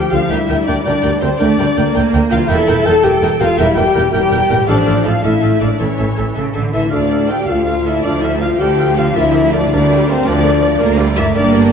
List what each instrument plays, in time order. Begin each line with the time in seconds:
Already playing: harp D3 F3 D4 A4, viola section F3, french horn section G4, flute G5, violin section G5
0.11 cello section D2, double bass section D2, harp D3, french horn section F4, violin section A4 F5, clarinet A4, oboe F5, flute F5
0.17 harp G3
0.21 harp D4
0.25 french horn section E4, harp A#4
0.30 cello section D2, double bass section D2, viola section G3, violin section A#4 E5 G5, clarinet A#4, flute E5, oboe G5
0.49 cello section D2, double bass section D2, clarinet A#4, violin section A#4 G5, oboe G5
0.67 cello section D2, double bass section D2, french horn section D4, violin section A#4 D5 G5, clarinet A#4, flute D5, oboe G5
0.84 cello section D2, double bass section D2, french horn section D4, violin section A#4 D5 G5, clarinet A#4, flute D5, oboe G5
1.02 cello section D2, double bass section D2, violin section A#4 G5, clarinet A#4, oboe G5
1.20 cello section D2, double bass section D2, french horn section C4, violin section A#4 C5 G5, clarinet A#4, flute C5, oboe G5
1.38 cello section D2, double bass section D2, viola section A3, french horn section D4, violin section A#4 D5 G5, clarinet A#4, flute D5, oboe G5
1.58 cello section D2, double bass section D2, viola section G3, clarinet A#4, violin section A#4 G5, oboe G5
1.76 cello section D2, double bass section D2, viola section A#3, violin section A#4 G5, clarinet A#4, oboe G5
1.94 cello section D2, double bass section D2, clarinet A#4, violin section A#4 G5, oboe G5
2.12 cello section D2, double bass section D2, clarinet A#4, violin section A#4 G5, oboe G5
2.29 double bass section D2, cello section D2, harp E3, french horn section F4, violin section A#4 F5 G5, clarinet A#4, flute F5, oboe G5
2.36 harp G3
2.40 harp G4
2.45 french horn section E4, harp A#4, violin section A#4 G5, clarinet A#4, oboe G5
2.49 double bass section E1, cello section E2, viola section A4, violin section E5, flute E5
2.67 double bass section E1, cello section E2, violin section A#4 G5, clarinet A#4, oboe G5
2.85 double bass section E1, cello section E2, french horn section A4, violin section A#4 G5 A5, clarinet A#4, oboe G5, flute A5
3.02 double bass section E1, cello section E2, french horn section G4, violin section A#4 G5, clarinet A#4, oboe G5, flute G5
3.22 double bass section E1, cello section E2, clarinet A#4, violin section A#4 G5, oboe G5
3.39 double bass section E1, cello section E2, french horn section F4, violin section A#4 F5 G5, clarinet A#4, flute F5, oboe G5
3.57 double bass section E1, cello section E2, viola section G3, french horn section E4, violin section A#4 E5 G5, clarinet A#4, flute E5, oboe G5
3.75 double bass section E1, cello section E2, french horn section G4, violin section A#4 G5, clarinet A#4, oboe G5, flute G5
3.94 double bass section E1, cello section E2, clarinet A#4, violin section A#4 G5, oboe G5
4.12 double bass section E1, cello section E2, viola section G3, french horn section G4, clarinet A#4, violin section A#4 G5, oboe G5, flute G5
4.31 double bass section E1, cello section E2, violin section A#4 G5, clarinet A#4, oboe G5
4.50 double bass section E1, cello section E2, harp A2, clarinet A#4, violin section A#4 G5, oboe G5
4.55 harp A3
4.60 harp F4
4.64 harp A4, violin section A4 D5 F5, clarinet A4, oboe F5
4.69 double bass section A1, cello section A2, viola section F3, french horn section D4, flute D5
4.86 double bass section A1, cello section A2, clarinet A4, violin section A4 F5, oboe F5
5.05 double bass section A1, cello section A2, french horn section F4, violin section A4 F5, clarinet A4, oboe F5, flute F5
5.22 double bass section A1, cello section A2, viola section A3, french horn section E4, violin section A4 E5 F5, clarinet A4, flute E5, oboe F5
5.40 double bass section A1, cello section A2, violin section A4 F5, clarinet A4, oboe F5
5.60 double bass section A1, cello section A2, harp A2, french horn section D4, violin section A4 D5 F5, clarinet A4, flute D5, oboe F5
5.67 harp A3
5.71 harp E4
5.76 harp A4, violin section A4 E5
5.80 double bass section A1, cello section A2, viola section E3, french horn section C#4, clarinet A4, violin section C#5, flute C#5, oboe E5
5.97 double bass section A1, cello section A2, violin section A4 E5, clarinet A4, oboe E5
6.16 double bass section A1, cello section A2, violin section A4 E5, clarinet A4, oboe E5
6.35 double bass section A1, cello section C#3, violin section A4 E5, clarinet A4, oboe E5
6.53 double bass section A1, cello section D3, violin section A4 E5, clarinet A4, oboe E5
6.73 double bass section A1, harp D3, cello section E3, french horn section E4, clarinet A4, violin section A4 E5, oboe E5, flute E5
6.79 harp A3
6.84 harp F4
6.88 french horn section D4, violin section F4 F5, harp A4, flute D5, oboe F5
6.93 cello section D2, double bass section D2, clarinet A4, violin section D5
7.10 violin section A4 D5, clarinet A4, oboe F5
7.27 violin section F4 F5 G5, french horn section G4, clarinet A4, oboe F5, flute G5
7.46 cello section D2, double bass section D2, french horn section F4, violin section A4 D5 F5, clarinet A4, oboe F5, flute F5
7.66 violin section F4 F5, clarinet A4, oboe F5
7.85 french horn section E4, violin section A4 D5 E5, clarinet A4, flute E5, oboe F5
8.04 cello section D2, double bass section D2, viola section F3, french horn section D4, violin section F4 D5 F5, clarinet A4, flute D5, oboe F5
8.21 french horn section E4, violin section A4 D5 E5, clarinet A4, flute E5, oboe F5
8.40 french horn section F4, violin section F4 F5, clarinet A4, oboe F5, flute F5
8.59 cello section D2, double bass section D2, french horn section G4, violin section A4 D5 G5, clarinet A4, oboe F5, flute G5
8.78 violin section F4 F5, clarinet A4, oboe F5
8.96 harp D3, french horn section F4, violin section A4 D5 F5, clarinet A4, flute F5, oboe F5
9.03 harp A#3
9.08 harp D4
9.12 violin section F4 D5, clarinet A#4, harp D5, oboe D5, flute E5
9.16 cello section D2, double bass section D2, french horn section E4, violin section E5
9.34 clarinet A#4, violin section A#4 F5, oboe D5
9.52 french horn section D4, violin section F4 D5, clarinet A#4, flute D5, oboe D5
9.71 cello section D2, double bass section D2, viola section G3, french horn section D4, violin section A#4 D5 F5, clarinet A#4, flute D5, oboe D5
9.89 violin section F4 D5, clarinet A#4, oboe D5
10.08 french horn section C4, violin section A#4 C5 F5, clarinet A#4, flute C5, oboe D5
10.26 double bass section D2, cello section D2, viola section F3, french horn section D4, violin section F4 D5, clarinet A#4, oboe D5, flute D5
10.43 violin section A#4 F5, clarinet A#4, oboe D5
10.61 violin section F4 D5, clarinet A#4, oboe D5
10.79 cello section D2, double bass section D2, viola section A#3, clarinet A#4, violin section A#4 F5, oboe D5
10.98 viola section G3, violin section F4 D5, clarinet A#4, oboe D5
11.17 harp G2, viola section A3, french horn section E4, clarinet A#4, violin section A#4 E5 F5, oboe D5, flute E5
11.23 harp A#3
11.27 harp D4
11.32 clarinet A#4, harp D5, violin section D5
11.36 double bass section G1, cello section G2, viola section A#3, french horn section D4, violin section G4 D5, flute D5, oboe D5
11.54 clarinet A#4, violin section A#4 G5, oboe D5